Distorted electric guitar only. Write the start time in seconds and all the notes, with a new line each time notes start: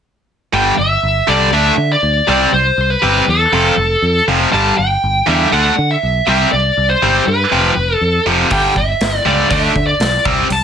0.54 G2 D3 G3
1.28 G2 D3 G3
1.53 D3 A3 D4
2.27 C3 G3 C4
3.02 C3 G3 C4
3.53 F2 C3 F3
4.28 F2 C3 F3
4.52 G2 D3 G3
5.27 G2 D3 G3
5.52 D3 A3 D4
6.28 C3 G3 C4
7.03 C3 G3 C4
7.52 F2 C3 F3
8.27 F2 C3 F3
8.52 G2 D3 G3
9.25 G2 D3 G3
9.51 D3 A3 D4
10.26 C3 G3 C4